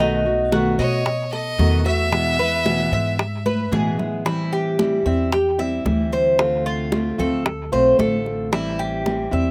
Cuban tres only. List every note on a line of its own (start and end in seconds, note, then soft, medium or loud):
0.00 0.51 D#4 medium
0.53 0.78 F#4 medium
0.79 1.31 D#5 medium
1.33 1.84 A4 medium
1.86 2.38 E5 medium
2.39 2.91 B4 medium
2.93 3.44 E5 medium
3.46 3.72 B4 medium
3.72 4.24 G#4 medium
4.26 4.52 E4 medium
4.53 5.04 G4 medium
5.06 5.32 E5 medium
5.33 5.59 G4 medium
5.59 6.11 E5 medium
6.13 6.64 C5 medium
6.66 7.18 F4 medium
7.20 7.71 A4 medium
7.73 7.98 C5 medium
7.99 8.51 A4 medium
8.53 8.78 E4 medium
8.79 9.31 G4 medium
9.33 9.51 E5 medium